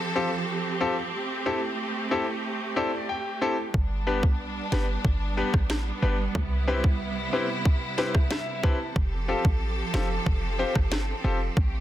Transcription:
0.00 1.11 F3 medium
0.00 3.70 C4 medium
0.00 3.70 G4 medium
0.00 1.11 A4 medium
0.15 0.29 C4 medium
0.15 0.29 F4 medium
0.15 0.29 G4 medium
0.15 0.29 A4 loud
0.80 0.94 C4 medium
0.80 0.94 F4 medium
0.80 0.94 G4 medium
0.80 0.94 A4 loud
1.13 3.72 A3 medium
1.46 1.59 C4 medium
1.46 1.59 E4 medium
1.46 1.59 G4 medium
1.46 1.59 A4 medium
2.11 2.24 C4 medium
2.11 2.24 E4 medium
2.11 2.24 G4 medium
2.11 2.24 A4 medium
2.76 2.89 C4 medium
2.76 2.89 E4 medium
2.76 2.90 G4 medium
2.76 2.90 A4 loud
2.76 3.07 D5 medium
3.09 3.70 G5 medium
3.41 3.55 C4 medium
3.41 3.55 E4 medium
3.41 3.55 G4 medium
3.41 3.55 A4 loud
3.74 4.25 G1 loud
3.74 8.92 G3 medium
3.74 8.92 B3 medium
3.74 6.32 D4 medium
3.74 kick loud
4.07 4.20 B3 medium
4.07 4.20 D4 medium
4.07 4.20 G4 medium
4.07 4.20 B4 medium
4.23 4.61 B1 medium
4.23 kick medium
4.72 4.98 G1 medium
4.72 4.85 B3 medium
4.72 4.85 D4 medium
4.72 4.85 G4 medium
4.72 4.85 B4 medium
4.72 cross-stick medium
4.72 snare loud
5.05 5.43 G1 loud
5.05 kick medium
5.37 5.50 B3 medium
5.37 5.50 D4 medium
5.37 5.50 G4 medium
5.37 5.50 B4 loud
5.54 5.92 A1 medium
5.54 kick medium
5.54 cross-stick medium
5.70 cross-stick medium
5.70 snare loud
6.02 6.28 G1 medium
6.02 6.15 B3 medium
6.02 6.16 D4 medium
6.02 6.16 G4 medium
6.02 6.16 B4 loud
6.35 7.29 C2 loud
6.35 8.93 C3 medium
6.35 8.93 E4 medium
6.35 kick loud
6.67 6.81 C4 medium
6.67 6.81 E4 medium
6.67 6.81 G4 medium
6.67 6.81 B4 loud
6.84 kick medium
7.33 7.46 C4 medium
7.33 7.46 E4 medium
7.33 7.46 G4 medium
7.33 7.46 B4 medium
7.65 kick medium
7.98 8.11 C4 medium
7.98 8.11 E4 medium
7.98 8.11 G4 medium
7.98 8.11 B4 loud
7.98 snare medium
8.15 kick medium
8.15 cross-stick medium
8.31 8.61 E5 medium
8.31 cross-stick medium
8.31 snare loud
8.63 8.76 C4 medium
8.63 8.76 E4 medium
8.63 8.76 G4 medium
8.63 8.77 B4 loud
8.63 8.94 A5 medium
8.63 kick medium
8.96 9.34 F1 loud
8.96 11.54 F3 medium
8.96 11.80 C4 medium
8.96 11.54 G4 medium
8.96 11.54 A4 medium
8.96 kick loud
9.28 9.41 C4 medium
9.28 9.42 F4 medium
9.28 9.42 G4 medium
9.28 9.42 A4 medium
9.45 9.83 A1 medium
9.45 kick medium
9.94 10.19 F1 medium
9.94 10.07 C4 medium
9.94 10.07 F4 medium
9.94 10.07 G4 medium
9.94 10.07 A4 medium
9.94 cross-stick medium
9.94 snare loud
10.26 10.65 F1 loud
10.26 kick loud
10.59 10.72 C4 medium
10.59 10.72 F4 medium
10.59 10.72 G4 medium
10.59 10.72 C5 loud
10.76 11.14 G1 medium
10.76 kick medium
10.76 cross-stick medium
10.92 cross-stick medium
10.92 snare loud
11.24 11.50 F1 loud
11.24 11.37 C4 medium
11.24 11.37 F4 medium
11.24 11.37 G4 medium
11.24 11.37 A4 medium
11.57 11.80 A1 loud
11.57 11.80 A3 medium
11.57 11.80 G4 medium
11.57 kick loud

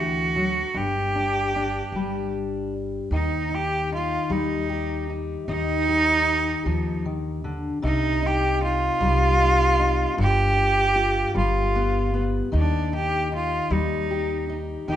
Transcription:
0.00 0.62 D2 medium
0.00 0.36 E3 medium
0.00 0.71 F#4 medium
0.00 0.78 F#4 medium
0.00 0.71 A4 medium
0.36 0.75 F#3 medium
0.74 1.80 G1 medium
0.74 3.11 G2 medium
0.74 2.33 G4 loud
1.15 1.54 D4 medium
1.56 2.73 D4 medium
1.92 2.98 G1 medium
1.92 3.08 G3 medium
3.11 4.16 D#2 medium
3.11 5.43 D#3 medium
3.11 3.56 D#4 medium
3.11 3.51 D#4 medium
3.51 3.92 D#4 medium
3.51 3.92 G4 medium
3.92 5.09 D#4 medium
3.92 4.34 F4 medium
4.30 5.35 D#2 medium
4.30 6.66 G3 medium
4.30 5.09 D#4 medium
4.70 5.88 G4 medium
5.10 5.49 D#4 medium
5.48 6.53 D#2 medium
5.48 7.04 D#3 medium
5.48 7.01 D#4 loud
5.48 6.69 D#4 medium
5.88 10.18 G4 medium
6.66 7.70 D#2 medium
6.66 7.05 F3 medium
7.05 7.44 D#3 medium
7.44 7.82 D3 medium
7.82 8.87 C2 medium
7.82 10.17 C3 medium
7.82 8.21 D#4 medium
7.82 8.28 D#4 loud
8.22 8.61 D#4 medium
8.22 8.62 G4 loud
8.62 9.39 D#4 medium
8.62 10.14 F4 loud
9.01 10.04 C2 medium
9.01 10.21 G3 medium
9.40 9.78 D#4 medium
9.79 10.13 D#4 medium
10.17 11.22 G1 loud
10.17 12.52 G2 medium
10.17 10.56 F4 medium
10.21 11.33 G4 loud
10.57 10.95 F4 medium
10.96 12.48 F4 medium
11.34 12.40 G1 medium
11.34 13.71 G3 medium
11.34 12.20 F4 medium
11.75 12.13 B3 medium
12.14 12.48 B3 medium
12.52 13.58 D#2 medium
12.52 14.83 D#3 medium
12.52 12.93 D#4 medium
12.56 12.91 D4 medium
12.93 13.31 D#4 medium
12.93 13.30 G4 medium
13.32 14.49 D#4 medium
13.32 13.75 F4 medium
13.71 14.75 D#2 medium
13.71 14.96 G3 medium
13.71 14.50 D#4 medium
14.11 14.96 G4 medium
14.49 14.89 D#4 medium
14.88 14.96 D#2 medium
14.88 14.96 D#3 medium
14.88 14.96 D#4 medium
14.88 14.96 G4 medium

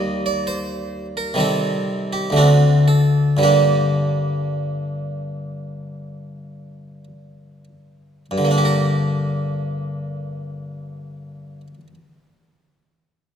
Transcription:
0.00 1.33 D#2 medium
0.00 1.33 D#3 soft
0.00 1.34 G3 soft
0.00 1.35 A#3 soft
0.00 0.25 D#5 medium
0.26 0.48 D5 medium
0.47 1.05 C5 medium
1.17 1.40 A#4 medium
1.34 2.31 C3 soft
1.34 2.31 D#3 soft
1.34 2.32 G3 soft
1.34 2.33 C4 soft
1.40 2.12 A4 medium
2.13 2.37 G4 medium
2.30 3.36 D2 soft
2.30 3.37 D3 soft
2.30 3.37 A3 soft
2.36 2.85 C4 soft
2.36 2.85 D4 soft
2.36 2.80 F#4 medium
2.88 3.42 A4 medium
3.37 8.25 G2 soft
3.37 8.26 D3 soft
3.37 8.26 G3 soft
3.43 7.64 A#3 soft
3.43 7.64 D4 soft
3.43 7.04 G4 medium
8.31 11.61 G2 soft
8.38 11.67 D3 soft
8.45 11.74 A#3 soft
8.51 11.80 D4 soft
8.58 11.87 G4 soft
8.65 11.94 A#4 soft

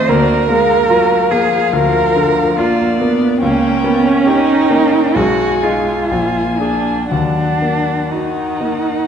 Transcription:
0.00 0.10 D#2 medium
0.00 0.11 D#3 medium
0.00 0.11 C4 medium
0.00 0.11 F4 medium
0.00 0.10 C5 loud
0.08 1.69 D2 medium
0.08 0.50 A#3 medium
0.08 1.33 A#4 loud
0.08 0.48 D5 medium
0.49 0.88 G#3 loud
0.49 1.15 A#3 medium
0.49 0.88 F5 medium
0.88 1.31 F#3 medium
0.88 1.56 F4 medium
0.88 2.59 F5 loud
1.30 2.58 F3 medium
1.30 1.98 A#3 medium
1.30 1.75 G#4 loud
1.73 3.37 D2 medium
1.73 2.60 A#4 loud
2.16 2.83 D3 medium
2.57 3.01 A#3 medium
2.57 3.00 F4 loud
2.57 3.25 F4 medium
2.57 3.40 D5 medium
2.99 3.42 A#3 medium
2.99 3.40 B3 loud
3.40 5.13 C#2 medium
3.40 3.86 A#3 loud
3.40 5.17 C#4 loud
3.40 4.22 G5 medium
3.84 4.53 A#3 medium
3.84 4.08 B3 loud
4.06 4.29 C#4 loud
4.26 5.18 D#4 loud
4.26 4.98 G4 medium
4.26 5.17 G5 medium
4.70 5.16 A#3 medium
5.15 6.08 B1 medium
5.15 6.11 G#3 medium
5.15 5.64 F#4 loud
5.15 6.10 G#5 medium
5.63 6.07 D#4 medium
5.63 6.61 F4 medium
5.63 6.07 G#4 medium
6.10 7.08 A#1 medium
6.10 7.10 A#3 medium
6.10 7.09 G#5 medium
6.59 7.10 D4 medium
6.59 7.07 D4 medium
6.59 7.07 G#4 medium
7.10 9.05 D#2 medium
7.10 8.00 F#3 medium
7.10 8.13 D4 medium
7.10 8.09 F#5 medium
7.62 8.41 A#3 medium
8.11 9.07 D#3 medium
8.11 9.07 D#4 medium
8.11 8.89 F#4 medium
8.11 9.07 F#5 medium
8.61 9.07 A#3 medium

